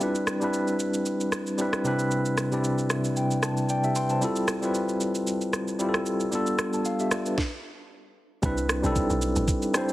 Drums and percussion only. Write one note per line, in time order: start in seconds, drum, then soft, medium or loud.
0.01 shaker medium
0.15 shaker medium
0.27 cross-stick medium
0.27 shaker medium
0.42 shaker soft
0.54 shaker medium
0.68 shaker soft
0.79 shaker medium
0.94 shaker medium
1.06 shaker medium
1.20 shaker medium
1.32 cross-stick medium
1.32 shaker medium
1.47 shaker soft
1.58 shaker medium
1.73 cross-stick medium
1.73 shaker soft
1.85 shaker medium
1.99 shaker medium
2.11 shaker medium
2.25 shaker medium
2.38 cross-stick medium
2.38 shaker medium
2.52 shaker soft
2.64 shaker medium
2.78 shaker soft
2.90 cross-stick medium
2.90 shaker medium
3.04 shaker medium
3.16 shaker medium
3.31 shaker medium
3.43 cross-stick medium
3.43 shaker medium
3.57 shaker soft
3.69 shaker medium
3.84 shaker soft
3.95 shaker medium
4.10 shaker medium
4.22 shaker medium
4.36 shaker medium
4.48 cross-stick medium
4.48 shaker medium
4.63 shaker soft
4.75 shaker medium
4.89 shaker soft
5.01 shaker medium
5.15 shaker medium
5.27 shaker medium
5.41 shaker soft
5.53 cross-stick medium
5.53 shaker medium
5.68 shaker soft
5.80 shaker medium
5.94 cross-stick medium
5.94 shaker soft
6.06 shaker medium
6.20 shaker medium
6.32 shaker medium
6.47 shaker medium
6.59 cross-stick medium
6.59 shaker medium
6.73 shaker soft
6.85 shaker medium
6.99 shaker soft
7.11 cross-stick medium
7.11 shaker medium
7.26 shaker medium
7.38 kick loud
7.38 snare medium
8.43 kick loud
8.43 shaker medium
8.57 shaker medium
8.69 cross-stick loud
8.69 shaker loud
8.84 shaker medium
8.96 kick loud
8.96 shaker medium
9.10 shaker soft
9.22 shaker medium
9.36 shaker medium
9.48 kick loud
9.48 shaker medium
9.62 shaker medium
9.74 cross-stick medium
9.74 shaker loud
9.89 shaker medium